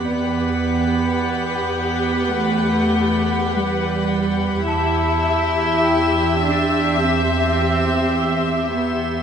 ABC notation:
X:1
M:4/4
L:1/8
Q:1/4=52
K:Em
V:1 name="Vibraphone"
d6 z2 | a2 g6 |]
V:2 name="Synth texture"
[Gfb]8 | [Gec']8 |]
V:3 name="Violin section"
f8 | e8 |]
V:4 name="Viola section"
[GB]8 | [Ge]8 |]
V:5 name="Cello section"
B,4 A,2 G,2 | E3 D C3 B, |]
V:6 name="Double bass section" clef=bass
E,,8 | E,,8 |]